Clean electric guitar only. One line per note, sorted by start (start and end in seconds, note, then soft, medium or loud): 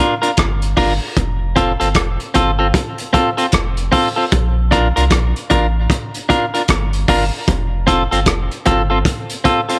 0.00 0.13 D4 medium
0.00 0.14 F4 medium
0.00 0.14 A#4 medium
0.22 0.30 D4 soft
0.22 0.30 F4 medium
0.22 0.30 A#4 medium
0.77 0.92 D4 medium
0.77 0.92 F4 medium
0.77 0.93 A#4 loud
1.56 1.71 C4 medium
1.56 1.71 F4 medium
1.56 1.72 A4 loud
1.80 1.88 C4 medium
1.80 1.88 F4 medium
1.80 1.88 A4 medium
2.34 2.50 C4 medium
2.34 2.50 F4 medium
2.34 2.51 A4 medium
2.59 2.67 C4 medium
2.59 2.67 F4 medium
2.59 2.66 A4 medium
3.13 3.29 C4 medium
3.13 3.29 F4 loud
3.13 3.29 A4 loud
3.37 3.46 C4 medium
3.37 3.46 F4 medium
3.37 3.45 A4 medium
3.92 4.07 C4 medium
3.92 4.08 F4 medium
3.92 4.08 A4 medium
4.16 4.25 C4 soft
4.16 4.24 F4 medium
4.16 4.24 A4 medium
4.71 4.86 D4 medium
4.71 4.87 F4 medium
4.71 4.87 A#4 medium
4.96 5.04 D4 medium
4.96 5.04 F4 medium
4.96 5.03 A#4 medium
5.50 5.65 D4 medium
5.50 5.66 F4 medium
5.50 5.66 A#4 medium
6.29 6.44 D4 medium
6.29 6.45 F4 loud
6.29 6.45 A#4 loud
6.54 6.62 D4 soft
6.54 6.62 F4 medium
6.54 6.61 A#4 medium
7.08 7.23 D4 medium
7.08 7.24 F4 loud
7.08 7.24 A#4 loud
7.87 8.02 C4 medium
7.87 8.02 F4 medium
7.87 8.03 A4 loud
8.11 8.19 C4 medium
8.11 8.19 F4 medium
8.11 8.19 A4 medium
8.66 8.81 C4 medium
8.66 8.81 F4 medium
8.66 8.81 A4 medium
8.90 8.98 C4 medium
8.90 8.98 F4 medium
8.90 8.97 A4 medium
9.44 9.60 C4 medium
9.44 9.60 F4 medium
9.44 9.60 A4 loud
9.69 9.77 C4 medium
9.69 9.77 F4 medium
9.69 9.76 A4 medium